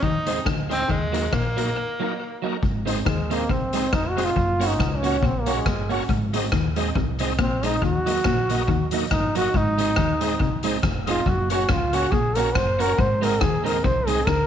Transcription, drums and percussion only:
0.03 kick
0.26 closed hi-hat
0.46 kick, cross-stick
0.71 closed hi-hat
0.89 kick
1.14 closed hi-hat
1.33 kick, cross-stick
1.58 closed hi-hat
2.63 kick
2.87 closed hi-hat
3.06 kick, cross-stick
3.31 closed hi-hat
3.49 kick
3.73 closed hi-hat
3.93 kick, cross-stick
4.18 closed hi-hat
4.36 kick
4.61 closed hi-hat
4.80 kick, cross-stick
5.04 closed hi-hat
5.23 kick
5.46 closed hi-hat
5.66 kick, cross-stick
5.90 open hi-hat
6.08 kick, hi-hat pedal
6.34 closed hi-hat
6.52 kick, cross-stick
6.76 closed hi-hat
6.96 kick
7.19 closed hi-hat
7.39 kick, cross-stick
7.63 closed hi-hat
7.82 kick
8.07 closed hi-hat
8.24 kick, cross-stick
8.50 closed hi-hat
8.68 kick
8.91 closed hi-hat
9.11 kick, cross-stick
9.35 closed hi-hat
9.54 kick
9.78 closed hi-hat
9.96 kick, cross-stick
10.21 closed hi-hat
10.40 kick
10.63 closed hi-hat
10.83 kick, cross-stick
11.07 closed hi-hat
11.26 kick
11.50 closed hi-hat
11.69 kick, cross-stick
11.93 closed hi-hat
12.12 kick
12.35 closed hi-hat
12.55 kick, cross-stick
12.80 closed hi-hat
12.98 kick
13.23 closed hi-hat
13.41 kick, cross-stick
13.66 closed hi-hat
13.84 kick
14.08 closed hi-hat
14.27 kick, cross-stick

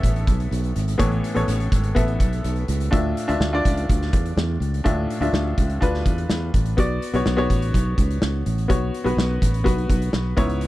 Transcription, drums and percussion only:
0.03 kick, closed hi-hat
0.16 closed hi-hat
0.27 kick, closed hi-hat
0.40 closed hi-hat
0.52 closed hi-hat
0.64 closed hi-hat
0.76 closed hi-hat
0.88 closed hi-hat
0.99 kick, closed hi-hat
1.12 closed hi-hat
1.24 closed hi-hat
1.36 closed hi-hat
1.48 closed hi-hat
1.60 closed hi-hat
1.72 kick, closed hi-hat
1.84 closed hi-hat
1.96 kick, closed hi-hat
2.08 closed hi-hat
2.20 kick, closed hi-hat
2.33 closed hi-hat
2.44 closed hi-hat
2.56 closed hi-hat
2.68 closed hi-hat
2.80 closed hi-hat
2.93 kick, closed hi-hat
3.17 closed hi-hat
3.29 closed hi-hat
3.41 snare
3.65 kick, closed hi-hat
3.77 closed hi-hat
3.89 kick, closed hi-hat
4.02 snare
4.13 kick, closed hi-hat
4.26 closed hi-hat
4.38 snare
4.62 closed hi-hat
4.74 closed hi-hat
4.86 kick, closed hi-hat
5.10 closed hi-hat
5.22 closed hi-hat
5.34 snare
5.58 kick, closed hi-hat
5.70 closed hi-hat
5.82 kick, closed hi-hat
5.94 snare
6.06 kick, closed hi-hat
6.18 closed hi-hat
6.30 snare
6.54 kick, closed hi-hat
6.66 closed hi-hat
6.78 kick, closed hi-hat
7.02 closed hi-hat
7.14 closed hi-hat
7.26 snare
7.39 closed hi-hat
7.50 kick, closed hi-hat
7.62 closed hi-hat
7.74 kick, closed hi-hat
7.98 kick, closed hi-hat
8.11 closed hi-hat
8.22 snare
8.46 closed hi-hat
8.58 closed hi-hat
8.70 kick, closed hi-hat
8.94 closed hi-hat
9.06 closed hi-hat
9.18 snare
9.42 kick, closed hi-hat
9.54 closed hi-hat
9.66 kick, closed hi-hat
9.78 closed hi-hat
9.90 kick, closed hi-hat
10.02 closed hi-hat
10.13 snare
10.37 kick, closed hi-hat
10.49 closed hi-hat
10.61 closed hi-hat

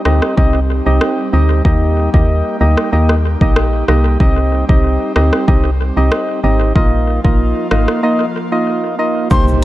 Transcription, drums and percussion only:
0.05 cross-stick
0.22 cross-stick
0.38 kick
1.01 cross-stick
1.65 kick
2.14 kick
2.77 cross-stick
3.09 cross-stick
3.41 kick
3.56 cross-stick
3.88 cross-stick
4.20 kick
4.69 kick
5.16 cross-stick
5.33 cross-stick
5.48 kick
6.12 cross-stick
6.75 kick
7.25 kick
7.71 cross-stick
7.88 cross-stick
9.31 kick, shaker
9.48 shaker

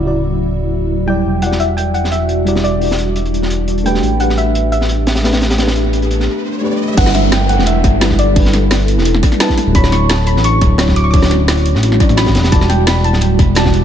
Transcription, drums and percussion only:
1.42 closed hi-hat
1.52 snare
1.60 closed hi-hat
1.78 closed hi-hat
1.94 closed hi-hat
2.04 snare
2.12 closed hi-hat
2.29 closed hi-hat
2.47 closed hi-hat
2.55 snare
2.65 closed hi-hat
2.81 open hi-hat
2.91 snare
2.99 closed hi-hat
3.16 closed hi-hat
3.26 closed hi-hat
3.34 closed hi-hat
3.42 snare
3.50 closed hi-hat
3.68 closed hi-hat
3.78 closed hi-hat
3.86 closed hi-hat
3.94 snare
4.03 closed hi-hat
4.20 closed hi-hat
4.30 snare
4.38 closed hi-hat
4.55 closed hi-hat
4.72 closed hi-hat
4.81 snare
4.89 closed hi-hat
5.07 snare, closed hi-hat
5.15 snare, closed hi-hat
5.24 snare, closed hi-hat
5.33 snare, closed hi-hat
5.41 snare, closed hi-hat
5.50 snare, closed hi-hat
5.58 snare, closed hi-hat
5.67 snare, closed hi-hat
5.76 closed hi-hat
5.93 closed hi-hat
6.02 closed hi-hat
6.11 closed hi-hat
6.20 snare
6.97 kick, closed hi-hat, crash
7.06 snare
7.14 snare, closed hi-hat
7.32 snare, closed hi-hat
7.49 closed hi-hat
7.59 snare
7.66 closed hi-hat
7.84 kick, closed hi-hat
8.01 snare, closed hi-hat
8.10 kick, snare
8.19 closed hi-hat
8.36 kick, closed hi-hat, open hi-hat
8.45 snare
8.54 snare, closed hi-hat
8.71 snare, closed hi-hat
8.80 closed hi-hat
8.88 closed hi-hat
8.98 snare
9.05 closed hi-hat
9.14 snare
9.23 kick, closed hi-hat
9.32 snare, closed hi-hat
9.40 snare, closed hi-hat
9.49 kick, snare
9.58 snare, closed hi-hat
9.75 kick, closed hi-hat
9.84 snare
9.92 snare, closed hi-hat
10.10 snare, closed hi-hat
10.27 closed hi-hat
10.37 snare
10.44 closed hi-hat
10.61 kick, closed hi-hat
10.78 snare, closed hi-hat
10.88 kick, snare
10.96 closed hi-hat
11.13 kick, closed hi-hat, open hi-hat
11.22 snare
11.31 snare, closed hi-hat
11.48 snare, closed hi-hat
11.57 closed hi-hat
11.66 closed hi-hat
11.75 snare
11.83 closed hi-hat
11.92 snare
12.00 kick, closed hi-hat
12.09 snare, closed hi-hat
12.17 snare, closed hi-hat
12.26 kick, snare, closed hi-hat
12.35 snare, closed hi-hat
12.44 snare, closed hi-hat
12.52 kick, closed hi-hat
12.61 snare
12.70 snare, closed hi-hat
12.87 snare, closed hi-hat
13.04 closed hi-hat
13.13 snare
13.21 closed hi-hat
13.39 kick, closed hi-hat
13.55 snare, closed hi-hat
13.65 kick, snare
13.74 closed hi-hat

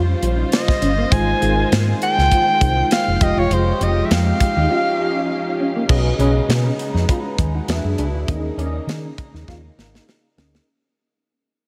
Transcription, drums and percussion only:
0.23 closed hi-hat
0.52 snare, closed hi-hat
0.68 kick, snare
0.82 closed hi-hat
1.12 kick, closed hi-hat
1.42 closed hi-hat
1.72 snare, closed hi-hat
2.02 closed hi-hat
2.18 snare
2.31 kick, closed hi-hat
2.61 kick, closed hi-hat
2.91 snare, closed hi-hat
3.21 kick, closed hi-hat
3.51 closed hi-hat
3.81 closed hi-hat
4.11 snare, closed hi-hat
4.40 kick, closed hi-hat
5.89 kick, crash
6.20 closed hi-hat
6.50 snare, closed hi-hat
6.79 closed hi-hat
6.96 snare
7.09 kick, closed hi-hat
7.38 kick, closed hi-hat
7.68 snare, closed hi-hat
7.98 closed hi-hat
8.28 kick, closed hi-hat
8.59 closed hi-hat
8.89 snare, closed hi-hat
9.18 kick, closed hi-hat
9.35 snare
9.48 kick, snare
9.79 snare
9.95 snare
10.09 snare
10.38 snare
10.55 snare

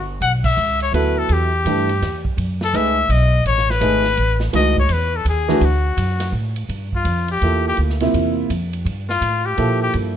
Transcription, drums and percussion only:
0.22 ride
0.44 kick, crash
0.57 hi-hat pedal
0.80 ride
0.94 ride
1.29 ride
1.66 hi-hat pedal, ride
1.89 ride
2.02 snare, ride
2.25 kick
2.38 ride
2.61 snare
2.74 hi-hat pedal, ride
3.10 ride
3.46 ride
3.58 snare
3.70 snare
3.81 hi-hat pedal, ride
4.04 snare
4.17 ride
4.40 snare
4.53 snare, ride
4.76 kick
4.89 hi-hat pedal, ride
5.26 ride
5.49 snare
5.61 ride
5.97 hi-hat pedal, ride
6.20 snare, ride
6.56 ride
6.69 ride
6.93 kick
7.05 hi-hat pedal, ride
7.28 ride
7.42 ride
7.77 ride
7.89 snare
8.00 snare, ride
8.14 ride
8.50 hi-hat pedal, ride
8.73 ride
8.86 ride
9.09 snare
9.22 hi-hat pedal, ride
9.58 ride
9.93 ride

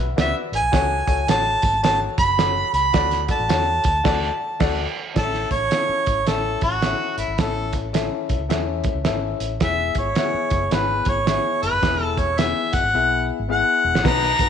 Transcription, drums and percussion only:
0.18 snare, closed hi-hat
0.53 closed hi-hat
0.73 kick, snare, closed hi-hat
1.08 kick, closed hi-hat
1.28 snare, closed hi-hat
1.62 kick, closed hi-hat
1.84 snare, closed hi-hat
2.18 kick, closed hi-hat
2.39 snare, closed hi-hat
2.74 closed hi-hat
2.94 kick, snare, closed hi-hat
3.11 snare, closed hi-hat
3.29 kick, closed hi-hat
3.49 snare, closed hi-hat
3.84 kick, closed hi-hat
4.05 kick, snare, crash
4.60 kick, snare, crash
5.16 kick, snare, closed hi-hat
5.34 snare
5.51 kick, closed hi-hat
5.71 snare, closed hi-hat
6.06 kick, closed hi-hat
6.27 snare, closed hi-hat
6.61 kick, closed hi-hat
6.82 snare, closed hi-hat
7.18 closed hi-hat
7.38 kick, snare, closed hi-hat
7.73 kick, closed hi-hat
7.94 snare, closed hi-hat
8.29 kick, closed hi-hat
8.50 snare, closed hi-hat
8.84 kick, closed hi-hat
9.05 snare, closed hi-hat
9.40 closed hi-hat
9.60 kick, snare, closed hi-hat
9.95 kick, closed hi-hat
10.15 snare, closed hi-hat
10.50 kick, closed hi-hat
10.71 snare, closed hi-hat
11.05 kick, closed hi-hat
11.27 snare, closed hi-hat
11.63 closed hi-hat
11.83 kick, snare, closed hi-hat
12.18 kick, closed hi-hat
12.38 snare, closed hi-hat
12.73 kick, closed hi-hat
13.95 snare
14.05 kick, snare, crash
14.23 snare
14.39 kick, closed hi-hat

